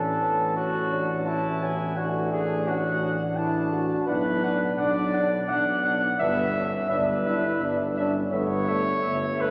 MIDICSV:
0, 0, Header, 1, 6, 480
1, 0, Start_track
1, 0, Tempo, 704225
1, 1345, Time_signature, 3, 2, 24, 8
1, 4706, Tempo, 715137
1, 6452, End_track
2, 0, Start_track
2, 0, Title_t, "Trumpet"
2, 0, Program_c, 0, 56
2, 0, Note_on_c, 0, 81, 49
2, 845, Note_off_c, 0, 81, 0
2, 861, Note_on_c, 0, 81, 62
2, 1106, Note_on_c, 0, 80, 64
2, 1116, Note_off_c, 0, 81, 0
2, 1338, Note_on_c, 0, 78, 55
2, 1349, Note_off_c, 0, 80, 0
2, 1650, Note_off_c, 0, 78, 0
2, 1825, Note_on_c, 0, 78, 69
2, 2297, Note_on_c, 0, 81, 59
2, 2308, Note_off_c, 0, 78, 0
2, 2772, Note_off_c, 0, 81, 0
2, 2776, Note_on_c, 0, 78, 65
2, 2885, Note_off_c, 0, 78, 0
2, 3012, Note_on_c, 0, 78, 63
2, 3121, Note_off_c, 0, 78, 0
2, 3251, Note_on_c, 0, 78, 66
2, 3360, Note_off_c, 0, 78, 0
2, 3490, Note_on_c, 0, 78, 63
2, 3599, Note_off_c, 0, 78, 0
2, 3737, Note_on_c, 0, 78, 62
2, 3846, Note_off_c, 0, 78, 0
2, 3976, Note_on_c, 0, 78, 64
2, 4085, Note_off_c, 0, 78, 0
2, 4217, Note_on_c, 0, 76, 76
2, 4326, Note_off_c, 0, 76, 0
2, 4457, Note_on_c, 0, 76, 65
2, 4566, Note_off_c, 0, 76, 0
2, 4697, Note_on_c, 0, 76, 72
2, 4804, Note_off_c, 0, 76, 0
2, 4935, Note_on_c, 0, 76, 63
2, 5043, Note_off_c, 0, 76, 0
2, 5171, Note_on_c, 0, 76, 68
2, 5279, Note_off_c, 0, 76, 0
2, 5417, Note_on_c, 0, 76, 65
2, 5525, Note_off_c, 0, 76, 0
2, 5650, Note_on_c, 0, 76, 64
2, 5757, Note_off_c, 0, 76, 0
2, 5890, Note_on_c, 0, 76, 63
2, 5997, Note_off_c, 0, 76, 0
2, 6126, Note_on_c, 0, 76, 64
2, 6234, Note_off_c, 0, 76, 0
2, 6366, Note_on_c, 0, 76, 61
2, 6452, Note_off_c, 0, 76, 0
2, 6452, End_track
3, 0, Start_track
3, 0, Title_t, "Flugelhorn"
3, 0, Program_c, 1, 56
3, 0, Note_on_c, 1, 69, 79
3, 376, Note_off_c, 1, 69, 0
3, 384, Note_on_c, 1, 66, 92
3, 867, Note_on_c, 1, 64, 74
3, 877, Note_off_c, 1, 66, 0
3, 1348, Note_on_c, 1, 66, 78
3, 1359, Note_off_c, 1, 64, 0
3, 1584, Note_off_c, 1, 66, 0
3, 1588, Note_on_c, 1, 68, 95
3, 1824, Note_on_c, 1, 66, 88
3, 1834, Note_off_c, 1, 68, 0
3, 2131, Note_off_c, 1, 66, 0
3, 2297, Note_on_c, 1, 62, 72
3, 2520, Note_off_c, 1, 62, 0
3, 2779, Note_on_c, 1, 71, 96
3, 3234, Note_off_c, 1, 71, 0
3, 3269, Note_on_c, 1, 74, 101
3, 3743, Note_on_c, 1, 78, 97
3, 3754, Note_off_c, 1, 74, 0
3, 4221, Note_off_c, 1, 78, 0
3, 4225, Note_on_c, 1, 76, 108
3, 4696, Note_off_c, 1, 76, 0
3, 4702, Note_on_c, 1, 71, 94
3, 5407, Note_off_c, 1, 71, 0
3, 5654, Note_on_c, 1, 73, 116
3, 6385, Note_on_c, 1, 71, 96
3, 6395, Note_off_c, 1, 73, 0
3, 6452, Note_off_c, 1, 71, 0
3, 6452, End_track
4, 0, Start_track
4, 0, Title_t, "Trombone"
4, 0, Program_c, 2, 57
4, 0, Note_on_c, 2, 61, 59
4, 1347, Note_on_c, 2, 62, 66
4, 1357, Note_off_c, 2, 61, 0
4, 2109, Note_off_c, 2, 62, 0
4, 2297, Note_on_c, 2, 62, 63
4, 2750, Note_off_c, 2, 62, 0
4, 2774, Note_on_c, 2, 62, 75
4, 2883, Note_off_c, 2, 62, 0
4, 3019, Note_on_c, 2, 62, 67
4, 3128, Note_off_c, 2, 62, 0
4, 3263, Note_on_c, 2, 62, 63
4, 3371, Note_off_c, 2, 62, 0
4, 3512, Note_on_c, 2, 62, 64
4, 3618, Note_off_c, 2, 62, 0
4, 3750, Note_on_c, 2, 62, 68
4, 3856, Note_off_c, 2, 62, 0
4, 3988, Note_on_c, 2, 62, 71
4, 4095, Note_off_c, 2, 62, 0
4, 4232, Note_on_c, 2, 62, 75
4, 4338, Note_off_c, 2, 62, 0
4, 4476, Note_on_c, 2, 62, 66
4, 4582, Note_off_c, 2, 62, 0
4, 4709, Note_on_c, 2, 62, 72
4, 4815, Note_off_c, 2, 62, 0
4, 4950, Note_on_c, 2, 62, 69
4, 5056, Note_off_c, 2, 62, 0
4, 5185, Note_on_c, 2, 62, 70
4, 5292, Note_off_c, 2, 62, 0
4, 5426, Note_on_c, 2, 62, 72
4, 5533, Note_off_c, 2, 62, 0
4, 5660, Note_on_c, 2, 57, 70
4, 5767, Note_off_c, 2, 57, 0
4, 5899, Note_on_c, 2, 57, 69
4, 6006, Note_off_c, 2, 57, 0
4, 6140, Note_on_c, 2, 57, 61
4, 6247, Note_off_c, 2, 57, 0
4, 6387, Note_on_c, 2, 57, 61
4, 6452, Note_off_c, 2, 57, 0
4, 6452, End_track
5, 0, Start_track
5, 0, Title_t, "French horn"
5, 0, Program_c, 3, 60
5, 0, Note_on_c, 3, 61, 59
5, 153, Note_on_c, 3, 59, 58
5, 163, Note_off_c, 3, 61, 0
5, 389, Note_off_c, 3, 59, 0
5, 393, Note_on_c, 3, 61, 62
5, 631, Note_on_c, 3, 62, 59
5, 641, Note_off_c, 3, 61, 0
5, 870, Note_on_c, 3, 61, 67
5, 881, Note_off_c, 3, 62, 0
5, 1110, Note_on_c, 3, 59, 59
5, 1121, Note_off_c, 3, 61, 0
5, 1345, Note_off_c, 3, 59, 0
5, 1349, Note_on_c, 3, 57, 73
5, 1822, Note_on_c, 3, 61, 75
5, 1832, Note_off_c, 3, 57, 0
5, 2064, Note_on_c, 3, 62, 66
5, 2074, Note_off_c, 3, 61, 0
5, 2296, Note_off_c, 3, 62, 0
5, 2300, Note_on_c, 3, 64, 73
5, 2533, Note_off_c, 3, 64, 0
5, 2542, Note_on_c, 3, 66, 78
5, 2789, Note_on_c, 3, 64, 81
5, 2799, Note_off_c, 3, 66, 0
5, 3024, Note_on_c, 3, 62, 85
5, 3034, Note_off_c, 3, 64, 0
5, 4037, Note_off_c, 3, 62, 0
5, 4228, Note_on_c, 3, 59, 80
5, 4449, Note_off_c, 3, 59, 0
5, 4476, Note_on_c, 3, 61, 77
5, 4706, Note_off_c, 3, 61, 0
5, 4714, Note_on_c, 3, 62, 83
5, 4950, Note_on_c, 3, 64, 87
5, 4960, Note_off_c, 3, 62, 0
5, 5192, Note_on_c, 3, 62, 82
5, 5202, Note_off_c, 3, 64, 0
5, 5429, Note_on_c, 3, 61, 78
5, 5439, Note_off_c, 3, 62, 0
5, 5662, Note_off_c, 3, 61, 0
5, 5666, Note_on_c, 3, 59, 80
5, 5908, Note_on_c, 3, 57, 82
5, 5918, Note_off_c, 3, 59, 0
5, 6452, Note_off_c, 3, 57, 0
5, 6452, End_track
6, 0, Start_track
6, 0, Title_t, "Tuba"
6, 0, Program_c, 4, 58
6, 0, Note_on_c, 4, 33, 69
6, 2666, Note_off_c, 4, 33, 0
6, 2782, Note_on_c, 4, 35, 81
6, 3206, Note_off_c, 4, 35, 0
6, 3263, Note_on_c, 4, 35, 88
6, 3687, Note_off_c, 4, 35, 0
6, 3752, Note_on_c, 4, 35, 79
6, 4171, Note_off_c, 4, 35, 0
6, 4228, Note_on_c, 4, 31, 105
6, 4650, Note_off_c, 4, 31, 0
6, 4709, Note_on_c, 4, 31, 89
6, 5128, Note_off_c, 4, 31, 0
6, 5180, Note_on_c, 4, 31, 77
6, 5604, Note_off_c, 4, 31, 0
6, 5658, Note_on_c, 4, 31, 94
6, 6085, Note_off_c, 4, 31, 0
6, 6143, Note_on_c, 4, 31, 83
6, 6452, Note_off_c, 4, 31, 0
6, 6452, End_track
0, 0, End_of_file